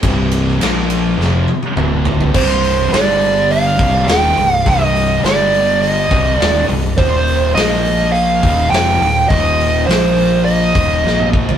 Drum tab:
CC |----------------|x---------------|----------------|----------------|
RD |x-x-x-x---------|----------------|----------------|----------------|
HH |----------------|--o-o-o-o-o-o-o-|o-o-o-o-o-o-o-o-|o-o-o-o-o-o-o-o-|
SD |---oo---o-------|----o-------o---|----o-------o---|----o-------o---|
T1 |----------oo----|----------------|----------------|----------------|
T2 |------------o---|----------------|----------------|----------------|
FT |--------------oo|----------------|----------------|----------------|
BD |o---------------|o---------o-----|o---------o-----|o---------o-----|

CC |----------------|
RD |----------------|
HH |o-o-o-o-o-o-----|
SD |----o-------o---|
T1 |----------------|
T2 |-------------o--|
FT |---------------o|
BD |o---------o---o-|